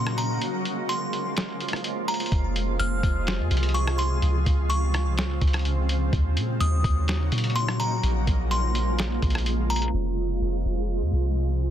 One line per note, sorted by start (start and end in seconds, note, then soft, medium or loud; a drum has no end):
0.00 0.39 A#2 loud
0.00 2.28 C#3 medium
0.00 0.40 F#3 medium
0.00 0.40 A#3 medium
0.00 0.40 D#4 medium
0.00 0.40 F#4 medium
0.00 0.16 C6 medium
0.07 cross-stick medium
0.18 0.40 A#5 medium
0.18 closed hi-hat medium
0.41 4.19 F3 medium
0.41 6.09 G#3 medium
0.41 2.30 A#3 medium
0.41 6.09 F4 medium
0.41 closed hi-hat medium
0.65 closed hi-hat medium
0.89 2.04 C6 medium
0.89 closed hi-hat medium
1.13 closed hi-hat medium
1.37 snare loud
1.37 closed hi-hat medium
1.61 closed hi-hat medium
1.68 closed hi-hat medium
1.73 cross-stick medium
1.73 closed hi-hat medium
1.84 closed hi-hat medium
2.08 2.31 A#5 medium
2.08 closed hi-hat medium
2.14 closed hi-hat medium
2.20 closed hi-hat medium
2.26 closed hi-hat medium
2.32 2.78 F1 loud
2.32 4.21 C3 medium
2.32 4.20 G#4 medium
2.32 kick loud
2.32 closed hi-hat medium
2.56 closed hi-hat medium
2.79 3.02 F1 loud
2.79 3.71 F6 medium
2.79 closed hi-hat medium
3.03 3.41 F1 loud
3.03 kick loud
3.03 closed hi-hat medium
3.27 snare loud
3.27 closed hi-hat medium
3.39 3.50 F2 loud
3.51 4.20 C2 loud
3.51 closed hi-hat medium
3.57 closed hi-hat medium
3.63 closed hi-hat medium
3.69 closed hi-hat medium
3.74 3.97 C#6 medium
3.74 closed hi-hat medium
3.88 cross-stick medium
3.98 4.21 C6 medium
3.98 closed hi-hat medium
4.22 4.45 C#2 loud
4.22 6.11 C#3 medium
4.22 6.11 F3 medium
4.22 6.11 C4 medium
4.22 closed hi-hat medium
4.46 5.07 C#2 loud
4.46 kick medium
4.46 closed hi-hat medium
4.70 5.61 C#6 medium
4.70 closed hi-hat medium
4.94 cross-stick loud
4.94 closed hi-hat medium
5.06 5.25 C2 loud
5.18 snare loud
5.18 closed hi-hat medium
5.24 5.41 C#2 loud
5.41 6.10 C#2 loud
5.41 kick loud
5.41 closed hi-hat medium
5.47 closed hi-hat medium
5.53 cross-stick medium
5.53 closed hi-hat medium
5.59 closed hi-hat medium
5.65 closed hi-hat medium
5.89 closed hi-hat medium
6.13 6.38 D#2 loud
6.13 9.90 C#3 medium
6.13 8.01 F#3 medium
6.13 9.90 A#3 medium
6.13 8.01 D#4 medium
6.13 8.01 F#4 loud
6.13 kick loud
6.13 closed hi-hat medium
6.37 6.59 A#2 loud
6.37 closed hi-hat medium
6.60 6.83 D#2 loud
6.60 7.52 D#6 medium
6.60 closed hi-hat medium
6.84 7.30 D#2 loud
6.84 kick loud
6.84 closed hi-hat medium
7.08 snare loud
7.08 closed hi-hat medium
7.32 8.00 A#2 loud
7.32 closed hi-hat medium
7.38 closed hi-hat medium
7.44 closed hi-hat medium
7.50 closed hi-hat medium
7.55 7.78 C6 medium
7.55 closed hi-hat medium
7.68 cross-stick loud
7.80 8.02 A#5 medium
7.80 closed hi-hat medium
8.03 8.26 A#1 loud
8.03 9.92 F3 medium
8.03 9.92 G#3 medium
8.03 9.92 F4 loud
8.03 closed hi-hat medium
8.27 9.19 A#1 loud
8.27 kick medium
8.27 closed hi-hat medium
8.51 9.66 C6 medium
8.51 closed hi-hat medium
8.75 closed hi-hat medium
8.99 snare loud
8.99 closed hi-hat medium
9.22 9.91 A#1 loud
9.22 kick loud
9.22 closed hi-hat medium
9.30 closed hi-hat medium
9.35 cross-stick medium
9.35 closed hi-hat medium
9.46 closed hi-hat medium
9.70 9.93 A#5 medium
9.70 closed hi-hat medium
9.76 closed hi-hat medium
9.82 closed hi-hat medium
9.88 closed hi-hat medium
9.94 10.39 F1 loud
9.94 11.71 C3 medium
9.94 11.71 F3 medium
9.94 11.71 G#3 medium
9.94 11.71 F4 medium
9.94 11.71 G#4 medium
10.41 10.64 F1 loud
10.65 11.02 F1 loud
11.01 11.12 F2 medium
11.13 11.71 C2 loud